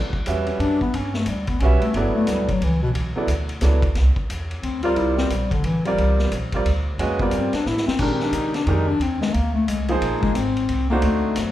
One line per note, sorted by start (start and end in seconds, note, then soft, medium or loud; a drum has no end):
0.00 0.25 D2 medium
0.13 kick medium
0.26 0.59 E2 medium
0.26 0.77 G3 medium
0.26 0.77 C#4 medium
0.26 0.77 F#4 medium
0.26 0.78 B4 medium
0.26 0.78 E5 medium
0.26 hi-hat pedal medium
0.26 ride medium
0.46 0.61 C#4 medium
0.46 ride soft
0.59 0.92 F#2 medium
0.59 0.81 D4 loud
0.59 ride medium
0.81 0.97 B3 loud
0.81 kick soft
0.93 1.26 G2 medium
0.93 1.18 C#4 loud
0.93 ride medium
1.14 1.30 A3 medium
1.14 snare medium
1.26 1.59 D2 medium
1.26 1.48 G3 medium
1.26 hi-hat pedal medium
1.26 ride medium
1.47 1.62 B3 medium
1.47 kick medium
1.47 ride medium
1.60 1.80 B1 medium
1.60 1.80 G3 medium
1.60 1.81 C#4 loud
1.60 1.81 C#4 medium
1.60 1.81 F#4 medium
1.60 1.81 B4 medium
1.60 ride medium
1.64 1.82 E5 medium
1.81 1.97 A3 medium
1.81 muted upright bass stroke soft
1.81 ride medium
1.93 2.13 G1 medium
1.93 2.45 F#3 medium
1.93 2.15 B3 medium
1.93 2.45 B3 medium
1.93 2.46 E4 medium
1.93 2.46 A4 medium
1.93 2.46 D5 medium
1.93 ride medium
2.15 2.31 A3 medium
2.15 muted upright bass stroke soft
2.27 2.39 D2 medium
2.27 2.51 G3 medium
2.27 snare soft
2.27 hi-hat pedal medium
2.27 ride medium
2.39 2.49 B1 medium
2.49 2.60 G1 medium
2.49 2.65 F#3 medium
2.49 kick medium
2.49 ride medium
2.61 2.93 C#2 medium
2.61 2.82 E3 medium
2.61 ride medium
2.83 2.90 B2 medium
2.94 3.14 B1 medium
2.94 ride medium
3.15 3.27 F#3 medium
3.15 3.28 B3 medium
3.15 3.28 E4 medium
3.15 3.28 A4 medium
3.15 3.28 D5 medium
3.15 muted upright bass stroke soft
3.27 3.61 D2 medium
3.27 hi-hat pedal medium
3.27 ride medium
3.49 ride medium
3.61 3.94 C#2 medium
3.61 3.81 F#3 medium
3.61 3.81 B3 medium
3.61 3.81 E4 medium
3.61 3.82 A4 medium
3.61 3.82 D5 medium
3.61 snare soft
3.61 hi-hat pedal medium
3.61 ride medium
3.82 kick medium
3.82 ride soft
3.95 4.15 C2 medium
3.95 snare soft
3.95 ride medium
4.16 muted upright bass stroke soft
4.16 kick medium
4.29 4.62 E2 medium
4.29 hi-hat pedal medium
4.29 ride medium
4.51 ride soft
4.63 4.95 D2 medium
4.63 4.82 C4 medium
4.63 ride medium
4.83 5.28 G3 medium
4.83 5.28 C4 medium
4.83 4.98 F4 loud
4.83 5.28 F4 medium
4.83 5.28 A#4 medium
4.83 5.28 D5 medium
4.83 ride soft
4.96 5.29 C2 medium
4.96 5.16 E4 medium
4.96 ride medium
5.17 5.33 C4 loud
5.17 snare medium
5.30 5.63 A#1 medium
5.30 5.53 G3 medium
5.30 hi-hat pedal medium
5.30 ride medium
5.51 5.67 D3 medium
5.51 kick medium
5.51 ride soft
5.63 5.96 A1 medium
5.63 5.86 E3 medium
5.63 ride medium
5.85 6.31 G3 medium
5.85 6.29 G3 medium
5.85 6.30 C4 medium
5.85 6.30 F4 medium
5.85 6.30 A#4 medium
5.85 6.30 D5 medium
5.85 ride soft
5.97 6.30 C2 medium
5.97 ride medium
6.19 snare soft
6.31 6.64 A#1 medium
6.31 hi-hat pedal medium
6.31 ride medium
6.52 6.65 G3 medium
6.52 6.65 C4 medium
6.52 6.65 F4 medium
6.52 6.65 A#4 medium
6.52 kick soft
6.52 ride medium
6.56 6.66 D5 medium
6.65 6.97 D2 medium
6.65 ride medium
6.98 7.31 F2 medium
6.98 7.18 G#3 medium
6.98 7.20 A#3 medium
6.98 7.18 C#4 medium
6.98 7.18 F#4 medium
6.98 7.19 B4 medium
6.98 7.19 D#5 medium
6.98 ride medium
7.19 7.50 G3 medium
7.19 7.36 B3 medium
7.19 7.50 C4 medium
7.19 7.50 F4 medium
7.19 7.50 A#4 medium
7.19 7.51 D5 medium
7.19 kick medium
7.31 7.52 G2 medium
7.31 7.54 C4 medium
7.31 hi-hat pedal medium
7.31 ride medium
7.53 7.69 D4 medium
7.53 muted upright bass stroke soft
7.53 snare medium
7.53 ride medium
7.66 7.86 A2 medium
7.66 7.86 E4 medium
7.66 snare soft
7.77 snare medium
7.87 8.01 C4 loud
7.87 muted upright bass stroke soft
7.87 snare medium
7.99 8.32 A#2 medium
7.99 8.51 D#3 medium
7.99 8.51 G#3 medium
7.99 8.14 D4 medium
7.99 8.51 D4 medium
7.99 8.52 G4 medium
7.99 8.52 A#4 medium
7.99 kick medium
7.99 crash medium
8.12 8.24 C4 medium
8.20 8.37 D4 medium
8.20 snare soft
8.32 8.66 C3 medium
8.32 8.55 D#4 loud
8.32 hi-hat pedal medium
8.32 ride medium
8.54 8.68 D4 medium
8.54 snare soft
8.54 ride soft
8.66 8.99 F2 medium
8.66 8.86 D#3 medium
8.66 8.86 G#3 medium
8.66 8.86 D4 medium
8.66 8.90 D#4 loud
8.66 8.87 G4 medium
8.66 8.87 A#4 medium
8.66 ride medium
8.88 9.04 D4 loud
8.99 9.33 D#2 medium
8.99 9.20 C4 medium
8.99 ride medium
9.21 9.35 G#3 loud
9.21 snare medium
9.33 9.67 D2 medium
9.33 9.53 A#3 medium
9.33 ride medium
9.54 9.69 A3 medium
9.68 10.00 C2 medium
9.68 10.02 G#3 medium
9.68 hi-hat pedal medium
9.68 ride medium
9.88 10.33 F3 medium
9.88 10.34 A#3 medium
9.88 10.34 D#4 medium
9.88 10.34 G#4 medium
9.88 10.35 C5 medium
9.88 ride medium
10.01 10.34 A#1 medium
10.01 ride medium
10.21 10.37 G#3 loud
10.21 kick medium
10.35 10.69 G#1 medium
10.35 10.89 C4 loud
10.35 hi-hat pedal medium
10.35 ride medium
10.57 ride soft
10.69 11.02 C2 medium
10.69 ride medium
10.90 11.35 A3 medium
10.90 11.06 A#3 loud
10.90 11.35 D4 medium
10.90 11.35 D#4 medium
10.90 11.35 F#4 medium
10.90 11.36 C5 medium
11.02 11.36 D2 medium
11.02 11.52 A3 medium
11.02 ride medium
11.36 11.52 F#2 medium
11.36 snare soft
11.36 hi-hat pedal medium
11.36 ride medium